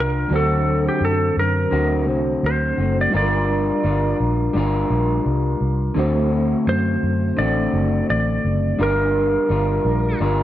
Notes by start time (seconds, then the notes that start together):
Already playing: C2 G3 D4 F4 A#4
0.00 A#4
0.28 D2 D3 F#3 D4 F#4
0.32 C4 F#4 A4 C5
0.88 G4
1.01 F#2 A4
1.37 F#2 A#4
1.71 D2 D3 C4 F#4
2.06 C2 A3 D4 F#4 C5
2.43 D2 C5
2.78 F#1 A3 C4 F#4
3.01 D5
3.10 G1 G3 D4 F4
3.15 A4 A#4 D5
3.22 A#4
3.83 G1 G3 D4 F4 A#4
4.20 A#1
4.53 G1 G3 D4 F4
4.57 A#4
4.90 A#1
5.26 C2
5.61 C2
5.94 D2 D3 A3 C4 D4 F#4
5.99 F#4 C5
6.67 F#2 C5
7.03 F#2
7.37 A1 D3 A3 C4 D5
7.41 F#4
7.73 F#1
8.10 A1 D5
8.45 F#1
8.77 G1 G3 D4 F4
8.81 A#4
9.49 G1 G3 D4 F4 A#4
9.85 A#1
10.20 G1 G3 D4 F4 A#4